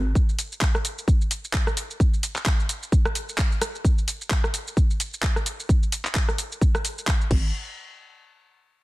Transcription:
0.00 0.14 G#1 loud
0.15 kick loud
0.15 shaker soft
0.29 shaker soft
0.39 open hi-hat loud
0.39 shaker medium
0.52 shaker soft
0.61 kick loud
0.61 clap loud
0.61 shaker soft
0.75 cross-stick medium
0.75 shaker soft
0.85 open hi-hat loud
0.85 shaker medium
0.98 shaker soft
1.08 kick loud
1.08 shaker soft
1.21 shaker soft
1.31 open hi-hat loud
1.31 shaker medium
1.45 shaker soft
1.53 kick loud
1.53 clap loud
1.53 shaker soft
1.67 cross-stick medium
1.67 shaker soft
1.77 open hi-hat loud
1.77 shaker medium
1.91 shaker soft
2.00 kick loud
2.00 shaker soft
2.14 shaker soft
2.23 open hi-hat loud
2.23 shaker medium
2.36 clap soft
2.36 shaker soft
2.46 kick loud
2.46 clap loud
2.46 shaker soft
2.60 shaker soft
2.69 open hi-hat loud
2.69 shaker medium
2.83 shaker soft
2.92 kick loud
2.92 shaker soft
3.05 cross-stick medium
3.05 shaker soft
3.15 open hi-hat loud
3.15 shaker medium
3.29 shaker soft
3.38 kick loud
3.38 clap loud
3.38 shaker soft
3.52 shaker soft
3.62 cross-stick medium
3.62 open hi-hat loud
3.62 shaker medium
3.75 shaker soft
3.85 kick loud
3.85 shaker soft
3.98 shaker soft
4.08 open hi-hat medium
4.08 shaker medium
4.21 shaker soft
4.30 kick loud
4.30 clap loud
4.30 shaker soft
4.44 cross-stick medium
4.44 shaker soft
4.54 open hi-hat medium
4.54 shaker medium
4.68 shaker soft
4.77 kick loud
4.77 shaker soft
4.91 shaker soft
5.00 open hi-hat medium
5.00 shaker medium
5.14 shaker soft
5.22 kick medium
5.22 clap loud
5.22 shaker soft
5.36 cross-stick medium
5.36 shaker soft
5.46 open hi-hat loud
5.46 shaker medium
5.60 shaker soft
5.69 kick loud
5.69 shaker soft
5.83 shaker soft
5.92 open hi-hat loud
5.92 shaker medium
6.05 clap soft
6.05 shaker soft
6.15 kick loud
6.15 clap loud
6.15 shaker soft
6.29 cross-stick medium
6.29 shaker soft
6.38 open hi-hat loud
6.38 shaker medium
6.52 shaker soft
6.62 kick loud
6.62 shaker soft
6.75 cross-stick medium
6.75 shaker soft
6.85 open hi-hat medium
6.85 shaker medium
6.98 shaker soft
7.07 kick medium
7.07 clap loud
7.07 shaker soft
7.21 shaker soft
7.31 7.52 G#1 medium
7.31 kick loud
7.31 crash medium

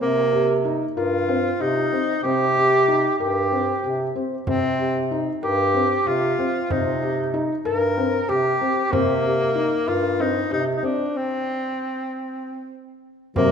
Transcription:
0.01 0.83 C3 medium
0.01 0.61 A#3 medium
0.01 0.19 C4 medium
0.33 0.51 G4 medium
0.65 0.83 D#4 medium
0.97 1.52 G2 medium
0.97 1.62 F4 medium
0.97 1.15 A#4 medium
1.29 1.47 C4 medium
1.60 1.88 C3 medium
1.60 2.22 D#4 medium
1.60 1.78 G4 medium
1.92 2.10 C4 medium
2.23 3.06 C3 medium
2.23 2.42 C4 medium
2.23 3.15 G4 medium
2.56 2.74 G4 medium
2.88 3.06 D#4 medium
3.19 3.74 G2 medium
3.19 4.11 G4 medium
3.19 3.38 A#4 medium
3.52 3.70 C4 medium
3.83 4.10 C3 medium
3.83 4.02 G4 medium
4.15 4.33 C4 medium
4.47 5.29 C3 medium
4.47 5.07 C4 medium
4.47 4.65 C4 medium
4.47 frame drum medium
4.79 4.97 G4 medium
5.11 5.29 D#4 medium
5.42 5.97 G2 medium
5.42 6.09 G4 medium
5.42 5.61 A#4 medium
5.42 frame drum soft
5.74 5.92 C4 medium
6.06 6.34 C3 medium
6.06 6.72 F4 medium
6.06 6.24 G4 medium
6.06 frame drum soft
6.38 6.56 C4 medium
6.38 frame drum soft
6.70 7.52 C3 medium
6.70 6.88 C4 medium
6.70 7.34 D#4 medium
6.70 frame drum medium
7.02 7.20 G4 medium
7.34 7.52 D#4 medium
7.65 8.20 G2 medium
7.65 8.30 A#4 medium
7.65 7.83 A#4 medium
7.65 frame drum soft
7.98 8.15 C4 medium
8.28 8.56 C3 medium
8.28 8.93 G4 medium
8.28 8.47 G4 medium
8.28 frame drum soft
8.61 8.79 C4 medium
8.61 frame drum soft
8.92 9.74 C3 medium
8.92 9.89 A#3 medium
8.92 9.10 C4 medium
8.92 frame drum medium
9.24 9.42 G4 medium
9.55 9.74 D#4 medium
9.88 10.42 G2 medium
9.88 10.22 F4 medium
9.88 10.06 A#4 medium
9.88 frame drum soft
10.20 10.37 C4 medium
10.20 10.52 D#4 medium
10.51 10.78 C3 medium
10.51 10.64 D#4 medium
10.51 10.69 G4 medium
10.51 frame drum soft
10.76 10.86 D#4 medium
10.83 11.01 C4 medium
10.83 11.18 D4 medium
10.83 frame drum soft
11.16 12.74 C4 medium
13.36 13.52 C3 medium
13.36 13.52 G3 medium
13.36 13.52 A#3 medium
13.36 13.52 C4 medium
13.36 frame drum medium

